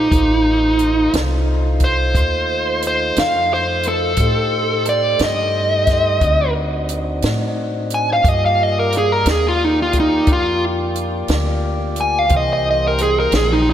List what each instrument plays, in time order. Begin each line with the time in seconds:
Already playing: lead electric guitar D#4
0.10 upright bass A1, tonewheel organ A3 D#4 F4 C5, kick, closed hi-hat
0.79 closed hi-hat
1.14 upright bass C2, snare, closed hi-hat
1.80 kick, closed hi-hat
1.84 lead electric guitar C5
2.15 upright bass D#2, kick, closed hi-hat
2.82 closed hi-hat
2.87 lead electric guitar C5
3.16 upright bass F2, lead electric guitar F5, snare, closed hi-hat
3.54 lead electric guitar C5
3.83 closed hi-hat
3.88 lead electric guitar A4
4.17 upright bass A2, tonewheel organ A3 D#4 G4 C5, kick, closed hi-hat
4.85 lead electric guitar D5, closed hi-hat
5.19 upright bass G2, snare, closed hi-hat
5.24 lead electric guitar D#5
5.87 kick, snare, closed hi-hat
6.20 upright bass D2, tonewheel organ C4 D4 D#4 F#4, kick, closed hi-hat
6.89 closed hi-hat
7.22 upright bass A2, snare, closed hi-hat
7.90 closed hi-hat
7.94 lead electric guitar G#5
8.13 lead electric guitar F5
8.23 upright bass G2, tonewheel organ A#3 F4 G4 D5, kick, closed hi-hat
8.28 lead electric guitar D#5
8.46 lead electric guitar F5
8.63 lead electric guitar D#5
8.79 lead electric guitar A#4
8.92 closed hi-hat
8.98 lead electric guitar G#4
9.12 lead electric guitar A#4
9.26 upright bass D#2, snare, closed hi-hat
9.31 lead electric guitar G#4
9.48 lead electric guitar F4
9.64 lead electric guitar D#4
9.82 lead electric guitar F4
9.93 kick, closed hi-hat
10.00 lead electric guitar D#4
10.27 upright bass F2, kick, closed hi-hat
10.33 lead electric guitar F4
10.96 closed hi-hat
11.28 upright bass D2, snare, closed hi-hat
11.96 closed hi-hat
12.01 lead electric guitar G#5
12.19 lead electric guitar F5
12.28 upright bass C2, tonewheel organ E3 A#3 G4 C5, kick, closed hi-hat
12.37 lead electric guitar D#5
12.53 lead electric guitar D#5
12.71 lead electric guitar D#5
12.87 lead electric guitar A#4
12.98 closed hi-hat
13.03 lead electric guitar G#4
13.20 lead electric guitar A#4
13.32 upright bass A#1, lead electric guitar G#4, snare, closed hi-hat
13.53 lead electric guitar D#4